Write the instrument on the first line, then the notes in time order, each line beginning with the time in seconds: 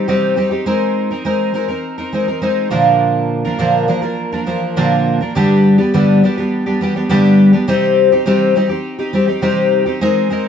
twelve-string acoustic guitar
0.08 C3 G3 C4 D#4 G4
0.36 G3 C4 D#4 G4
0.51 C4 D#4 G4
0.66 G#3 C4 D#4 A#4
1.11 C4 D#4 A#4
1.25 G#3 C4 D#4 A#4
1.54 G#3 C4 D#4 A#4
1.68 C4 D#4 A#4
1.98 C4 D#4 A#4
2.13 G#3 C4 D#4 A#4
2.28 C4 D#4 A#4
2.42 G#3 C4 D#4 A#4
2.71 A#2 D3 F3 A#3 D4 A#4
3.45 F3 A#3 D4 A#4
3.58 A#2 D3 F3 A#3 D4 A#4
3.88 F3 A#3 D4 A#4
4.02 F3 A#3 D4 A#4
4.32 F3 A#3 D4 A#4
4.46 F3 A#3 D4 A#4
4.76 A#2 D3 F3 A#3 D4 A#4
5.21 F3 A#3 D4 A#4
5.35 G2 D3 G3 B3 D4 G4
5.78 G3 B3 D4 G4
5.94 G2 D3 G3 B3 D4 G4
6.24 G3 B3 D4 G4
6.38 G3 B3 D4 G4
6.66 G3 B3 D4 G4
6.81 G3 B3 D4 G4
6.96 G3 B3 D4 G4
7.09 G2 D3 G3 B3 D4 G4
7.53 G3 B3 D4 G4
7.68 C3 G3 C4 D#4 G4
8.12 C4 D#4 G4
8.26 C3 G3 C4 D#4 G4
8.55 G3 C4 D#4 G4
8.69 C4 D#4 G4
8.99 C4 D#4 G4
9.13 G3 C4 D#4 G4
9.27 C4 D#4 G4
9.42 C3 G3 C4 D#4 G4
9.86 C4 D#4 G4
10.01 G#3 C4 D#4 A#4
10.30 G#3 C4 D#4 A#4